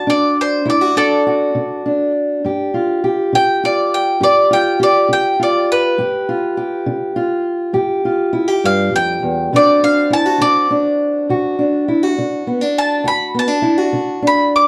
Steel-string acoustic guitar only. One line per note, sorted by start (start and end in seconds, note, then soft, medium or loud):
0.00 0.30 D3 medium
0.00 0.65 F#4 medium
0.07 0.96 D4 medium
0.65 1.19 D2 medium
0.65 0.81 E4 medium
0.81 1.26 F#4 medium
0.96 1.85 D4 medium
1.27 2.41 F#4 medium
1.55 2.08 D3 medium
1.86 2.74 D4 medium
2.44 2.97 G2 medium
2.44 3.04 G4 medium
2.74 3.63 F4 medium
3.04 4.21 G4 medium
3.33 3.86 D3 medium
3.64 4.49 F4 medium
4.20 4.74 G2 medium
4.20 4.78 G4 medium
4.51 5.38 F4 medium
4.80 5.94 G4 medium
5.09 5.62 D3 medium
5.40 5.95 F4 medium
5.98 6.51 G2 medium
5.98 6.56 G4 medium
6.29 7.15 F4 medium
6.57 7.72 G4 medium
6.86 7.40 D3 medium
7.16 8.04 F4 medium
7.73 8.27 G2 medium
7.73 8.32 G4 medium
8.05 9.49 F4 medium
8.33 8.48 E4 medium
8.48 9.52 G4 medium
8.64 8.93 G2 medium
8.93 9.22 F2 medium
9.22 9.52 E2 medium
9.53 10.06 D2 medium
9.53 10.40 D3 medium
9.53 13.04 C4 medium
9.53 9.83 D4 medium
9.53 10.10 F#4 medium
9.83 10.70 D4 medium
10.10 10.26 E4 medium
10.26 11.29 F#4 medium
10.41 10.94 D3 medium
10.71 11.58 D4 medium
11.29 11.83 D2 medium
11.29 11.88 F#4 medium
11.59 12.47 D4 medium
11.88 12.03 E4 medium
12.03 13.04 F#4 medium
12.18 12.71 D3 medium
12.47 12.61 B3 medium
12.61 13.06 D4 soft
13.04 13.58 D2 medium
13.04 13.62 F#4 medium
13.34 13.48 B3 medium
13.48 14.21 D4 medium
13.62 13.78 E4 medium
13.78 14.68 F#4 medium
13.93 14.47 D3 medium
14.22 14.68 D4 medium